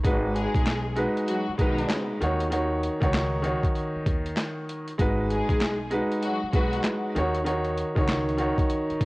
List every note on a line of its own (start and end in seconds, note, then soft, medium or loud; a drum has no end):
0.03 0.45 G#1 loud
0.03 0.77 G#3 loud
0.03 0.78 D#4 medium
0.03 0.78 F#4 medium
0.03 0.79 B4 loud
0.03 kick loud
0.03 closed hi-hat loud
0.34 0.93 G#3 medium
0.34 0.93 G#4 loud
0.34 closed hi-hat medium
0.54 1.05 B1 loud
0.54 kick medium
0.54 closed hi-hat medium
0.66 finger snap medium
0.66 snare loud
0.66 clap medium
0.66 closed hi-hat medium
0.95 1.42 G#3 loud
0.95 1.42 D#4 medium
0.95 1.43 F#4 medium
0.95 1.43 B4 loud
0.95 closed hi-hat medium
1.17 closed hi-hat medium
1.28 1.52 F#3 medium
1.28 1.53 F#4 medium
1.28 closed hi-hat loud
1.48 muted upright bass stroke medium
1.58 1.84 B1 loud
1.58 2.06 D#3 medium
1.58 2.20 G#3 loud
1.58 2.06 D#4 loud
1.58 2.20 D#4 medium
1.58 2.21 F#4 medium
1.58 2.22 B4 loud
1.58 kick loud
1.58 closed hi-hat medium
1.78 closed hi-hat medium
1.90 finger snap medium
1.90 snare loud
1.90 clap medium
1.90 closed hi-hat loud
2.21 2.87 D#2 loud
2.21 2.43 D#3 loud
2.21 2.44 D#4 medium
2.21 2.44 F#4 loud
2.21 2.45 C#5 loud
2.21 closed hi-hat medium
2.40 closed hi-hat medium
2.50 2.96 D#3 loud
2.50 2.97 D#4 medium
2.50 2.97 F#4 medium
2.50 2.98 C#5 loud
2.50 closed hi-hat loud
2.83 closed hi-hat medium
3.00 3.52 C#2 medium
3.00 3.41 D#3 loud
3.00 3.41 D#4 medium
3.00 3.42 F#4 medium
3.00 3.42 C#5 loud
3.00 kick medium
3.00 closed hi-hat medium
3.14 finger snap medium
3.14 snare loud
3.14 clap medium
3.14 closed hi-hat medium
3.42 4.89 D#3 loud
3.42 4.89 D#4 medium
3.42 4.90 F#4 medium
3.42 4.90 C#5 loud
3.42 closed hi-hat medium
3.63 kick loud
3.63 closed hi-hat medium
3.75 closed hi-hat loud
3.96 muted upright bass stroke medium
4.06 4.32 D#2 medium
4.06 kick loud
4.06 closed hi-hat medium
4.26 closed hi-hat medium
4.37 finger snap medium
4.37 snare loud
4.37 clap medium
4.37 closed hi-hat loud
4.69 closed hi-hat medium
4.88 closed hi-hat medium
4.98 5.40 G#1 loud
4.98 5.72 G#3 loud
4.98 5.72 D#4 medium
4.98 5.73 F#4 medium
4.98 5.73 B4 loud
4.98 kick loud
4.98 closed hi-hat loud
5.30 5.88 G#3 medium
5.30 5.88 G#4 medium
5.30 closed hi-hat medium
5.49 5.99 B1 medium
5.49 kick medium
5.49 closed hi-hat medium
5.61 finger snap medium
5.61 snare loud
5.61 clap medium
5.61 closed hi-hat medium
5.90 6.37 G#3 loud
5.90 6.37 D#4 medium
5.90 6.38 F#4 medium
5.90 6.38 B4 loud
5.90 closed hi-hat medium
6.12 closed hi-hat soft
6.22 6.47 F#3 medium
6.22 6.47 F#4 loud
6.22 closed hi-hat loud
6.43 muted upright bass stroke medium
6.52 6.79 B1 medium
6.52 7.00 F#3 medium
6.52 7.15 G#3 loud
6.52 7.15 D#4 medium
6.52 7.00 F#4 loud
6.52 7.16 F#4 medium
6.52 7.17 B4 loud
6.52 kick loud
6.52 closed hi-hat medium
6.73 closed hi-hat medium
6.84 finger snap medium
6.84 snare loud
6.84 clap medium
6.84 closed hi-hat loud
7.15 7.82 D#2 loud
7.15 7.38 D#3 loud
7.15 7.39 D#4 medium
7.15 7.39 F#4 loud
7.15 7.40 C#5 loud
7.15 closed hi-hat medium
7.35 closed hi-hat medium
7.44 7.91 D#3 loud
7.44 7.92 D#4 medium
7.44 7.92 F#4 medium
7.44 7.93 C#5 loud
7.44 closed hi-hat loud
7.65 closed hi-hat soft
7.78 closed hi-hat medium
7.95 8.47 C#2 medium
7.95 8.36 D#3 medium
7.95 8.36 D#4 medium
7.95 8.37 F#4 medium
7.95 8.37 C#5 loud
7.95 kick medium
7.95 closed hi-hat medium
8.09 finger snap medium
8.09 snare loud
8.09 clap medium
8.09 closed hi-hat medium
8.29 closed hi-hat soft
8.37 9.05 D#3 loud
8.37 9.05 D#4 medium
8.37 9.05 F#4 medium
8.37 9.05 C#5 loud
8.37 closed hi-hat medium
8.58 kick loud
8.58 closed hi-hat medium
8.70 closed hi-hat loud
8.90 muted upright bass stroke soft
8.90 closed hi-hat soft
9.01 9.05 D#2 medium
9.01 kick loud
9.01 closed hi-hat medium